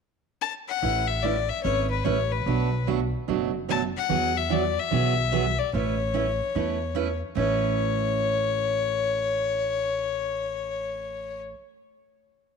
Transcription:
0.41 0.53 A5 loud
0.69 1.09 F#5 medium
0.82 1.48 A1 medium
0.82 1.04 A3 medium
0.82 1.04 C#4 medium
0.82 1.04 E4 medium
0.82 1.05 B4 medium
1.07 1.24 E5 medium
1.22 1.35 A3 medium
1.22 1.35 C#4 medium
1.22 1.36 E4 medium
1.22 1.36 B4 medium
1.22 1.51 D5 medium
1.49 1.63 E5 medium
1.63 1.99 G#1 medium
1.63 1.86 A3 medium
1.63 1.86 C#4 medium
1.63 1.86 E4 medium
1.63 1.87 B4 medium
1.63 1.88 C#5 medium
1.91 2.06 B4 medium
2.05 2.40 A1 medium
2.05 2.17 A3 medium
2.05 2.17 C#4 medium
2.05 2.17 E4 medium
2.05 2.17 B4 medium
2.05 2.33 C#5 medium
2.32 2.87 B4 medium
2.46 3.12 B1 medium
2.46 2.68 B2 soft
2.46 2.69 F#3 medium
2.46 2.69 A3 medium
2.46 2.69 D4 medium
2.46 2.69 F#4 medium
2.87 2.99 B2 medium
2.87 2.99 F#3 medium
2.87 2.99 A3 medium
2.87 2.99 D4 medium
2.87 2.99 F#4 medium
3.28 3.94 F#1 medium
3.28 3.50 B2 medium
3.28 3.50 F#3 medium
3.28 3.50 A3 medium
3.28 3.50 D4 medium
3.28 3.50 F#4 medium
3.69 3.80 B2 medium
3.69 3.80 F#3 medium
3.69 3.81 A3 medium
3.69 3.81 D4 medium
3.69 3.81 F#4 medium
3.69 3.82 A5 loud
3.97 4.39 F#5 loud
4.09 4.75 E2 medium
4.09 4.31 E3 medium
4.09 4.31 F#3 medium
4.09 4.31 B3 soft
4.09 4.32 F#4 medium
4.09 4.32 G#4 medium
4.37 4.54 E5 medium
4.50 4.62 E3 medium
4.50 4.62 F#3 medium
4.50 4.62 B3 medium
4.50 4.62 F#4 medium
4.50 4.62 G#4 medium
4.50 4.81 D5 medium
4.79 5.60 E5 medium
4.91 5.57 B1 medium
4.91 5.13 E3 medium
4.91 5.13 F#3 medium
4.91 5.14 B3 medium
4.91 5.13 F#4 medium
4.91 5.14 G#4 medium
5.32 5.44 E3 medium
5.32 5.44 F#3 medium
5.32 5.44 B3 medium
5.32 5.44 F#4 medium
5.32 5.44 G#4 medium
5.58 5.73 D5 medium
5.73 6.39 A1 medium
5.73 5.95 A3 medium
5.73 5.95 C#4 medium
5.73 5.95 E4 medium
5.73 5.96 B4 medium
5.73 7.19 C#5 medium
6.14 6.25 A3 medium
6.14 6.26 C#4 medium
6.14 6.26 E4 medium
6.14 6.26 B4 medium
6.55 7.21 E2 medium
6.55 6.77 A3 medium
6.55 6.77 C#4 medium
6.55 6.77 E4 medium
6.55 6.77 B4 medium
6.95 7.07 A3 medium
6.95 7.07 C#4 medium
6.95 7.07 E4 medium
6.95 7.07 B4 medium
7.35 11.52 A1 medium
7.35 11.55 A3 medium
7.35 11.56 C#4 medium
7.35 11.58 E4 medium
7.35 11.58 B4 medium
7.35 11.41 C#5 medium

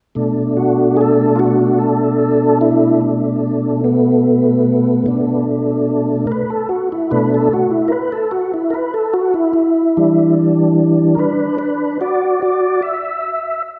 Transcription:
0.15 5.03 B2 medium
0.15 5.03 A3 soft
0.15 3.00 D4 medium
0.57 0.97 F#4 medium
0.97 1.01 G#4 medium
1.01 1.39 A4 medium
1.36 1.40 F4 medium
1.36 1.79 F#4 medium
1.78 2.59 A4 medium
2.61 3.01 E4 medium
3.01 3.81 D4 medium
3.84 5.44 B3 medium
5.06 6.25 B2 soft
5.06 6.26 A3 soft
5.06 6.27 D4 medium
6.27 6.32 A#4 medium
6.32 6.50 B4 medium
6.50 6.70 A4 medium
6.69 6.89 F#4 medium
6.92 7.11 E4 medium
7.11 7.49 B2 soft
7.11 7.49 A3 soft
7.11 7.48 D4 medium
7.11 7.31 B4 medium
7.34 7.53 A4 medium
7.53 7.72 F#4 medium
7.71 7.91 E4 medium
7.88 7.93 A#4 medium
7.88 8.12 B4 medium
8.12 8.32 A4 medium
8.31 8.52 F#4 medium
8.54 8.73 E4 medium
8.70 8.75 A#4 medium
8.70 8.94 B4 medium
8.94 9.14 A4 medium
9.14 9.34 F#4 medium
9.34 9.52 E4 medium
9.53 10.35 E4 medium
9.97 11.16 E3 soft
9.97 11.16 G3 soft
9.97 11.16 D4 medium
11.15 11.57 D4 medium
11.15 11.20 A#4 medium
11.19 11.57 B4 medium
11.58 11.98 D4 medium
11.58 12.00 B4 medium
12.01 12.40 F#4 medium
12.01 12.41 D5 medium
12.42 12.81 F#4 medium
12.42 12.82 D5 medium
12.82 13.62 E5 medium

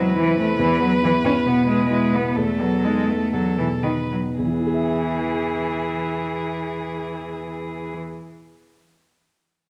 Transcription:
0.00 0.59 E2 soft
0.00 0.62 E3 soft
0.00 0.18 F#3 medium
0.00 0.37 C4 soft
0.00 0.16 E4 soft
0.00 2.37 B4 medium
0.16 0.39 E3 medium
0.16 0.50 E4 soft
0.37 0.60 A3 medium
0.37 0.59 C4 soft
0.59 1.43 E2 soft
0.59 0.81 E3 medium
0.80 0.90 F#3 medium
0.80 1.15 B3 soft
1.02 1.12 E3 medium
1.02 1.37 E4 soft
1.25 1.60 B3 soft
1.25 1.33 C#4 medium
1.46 1.82 B2 soft
1.46 1.67 B3 medium
1.68 1.89 G#3 medium
1.68 2.04 B3 soft
1.90 2.16 G#3 medium
1.90 2.27 E4 soft
2.13 2.36 B3 soft
2.13 2.37 B3 medium
2.35 3.31 E2 soft
2.35 2.62 A3 medium
2.35 3.33 A4 soft
2.61 2.86 F#3 medium
2.61 2.99 B3 soft
2.84 3.10 G#3 medium
2.84 3.24 D#4 soft
3.08 3.35 A3 medium
3.08 3.48 B3 soft
3.33 4.36 E2 soft
3.33 3.58 F#3 medium
3.33 3.85 A4 soft
3.58 4.01 B2 soft
3.58 3.66 E3 soft
3.83 3.91 D#3 soft
3.83 4.28 D#4 soft
3.83 4.13 B4 soft
4.12 4.20 F#3 soft
4.12 4.39 B3 soft
4.38 7.96 E2 soft
4.38 7.97 E3 soft
4.38 7.95 G#4 soft
4.46 8.03 E3 soft
4.53 8.10 B3 soft
4.59 8.16 E4 soft
4.67 8.24 G#4 soft
4.74 8.31 E5 soft

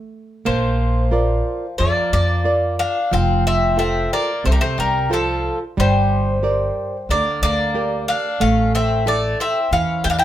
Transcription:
0.45 1.40 A#1 medium
0.45 1.75 F3 medium
0.45 1.10 A#3 medium
0.45 1.83 C5 medium
1.11 1.65 F4 soft
1.11 1.65 A#4 soft
1.11 1.66 D5 medium
1.78 1.91 F2 medium
1.78 2.44 F3 medium
1.78 2.11 A#3 medium
1.78 2.12 D5 medium
2.13 2.82 F2 medium
2.13 2.75 A#3 medium
2.13 2.79 D5 medium
2.44 2.98 F4 soft
2.44 2.98 A#4 soft
2.44 2.99 D5 medium
2.79 3.10 D4 medium
2.79 3.12 F5 medium
3.11 4.05 F1 loud
3.11 3.76 F3 medium
3.11 3.43 C4 medium
3.11 3.46 F5 medium
3.47 3.77 C4 medium
3.47 3.77 E5 medium
3.77 4.10 C4 medium
3.77 4.31 F4 soft
3.77 4.31 A4 soft
3.77 4.31 C5 medium
3.77 4.13 E5 medium
4.13 4.43 A#3 medium
4.13 4.43 D5 medium
4.44 4.57 C2 medium
4.44 5.09 C3 medium
4.44 4.53 A3 medium
4.44 4.52 C5 medium
4.51 4.59 G3 medium
4.51 4.59 A#4 medium
4.61 4.78 A3 medium
4.61 4.78 C5 medium
4.78 5.47 C2 medium
4.78 5.09 G3 medium
4.78 5.10 A#4 medium
5.10 5.58 F3 medium
5.10 5.63 F4 soft
5.10 5.63 A4 soft
5.10 5.58 A4 medium
5.10 5.64 C5 medium
5.77 6.70 G1 medium
5.77 6.41 G3 medium
5.77 7.06 G3 medium
5.77 7.14 C5 medium
6.43 6.96 G4 soft
6.43 6.96 A#4 soft
6.43 6.96 D5 medium
7.09 7.21 D2 medium
7.09 7.74 D3 medium
7.09 7.40 A#3 medium
7.09 7.42 D5 medium
7.42 8.11 D2 medium
7.42 8.05 A#3 medium
7.42 8.08 D5 loud
7.75 8.27 G4 soft
7.75 8.28 A#4 soft
7.75 8.28 D5 medium
8.08 8.39 D4 medium
8.08 8.40 F5 medium
8.40 9.33 A1 medium
8.40 9.04 A3 medium
8.40 8.72 C#4 medium
8.40 8.71 F5 loud
8.75 9.05 C4 medium
8.75 9.05 E5 medium
9.06 9.37 A3 medium
9.06 9.58 E4 soft
9.06 9.59 A4 soft
9.06 9.38 D5 medium
9.06 9.59 E5 soft
9.40 9.70 C4 medium
9.40 9.72 E5 medium
9.71 9.83 E2 medium
9.71 10.24 E3 medium
9.71 10.03 C#4 medium
9.71 10.03 F5 medium
10.04 10.24 E2 medium
10.04 10.11 E4 medium
10.04 10.09 G5 loud
10.10 10.18 D4 medium
10.10 10.18 F5 medium
10.19 10.24 E4 medium
10.19 10.24 G5 loud

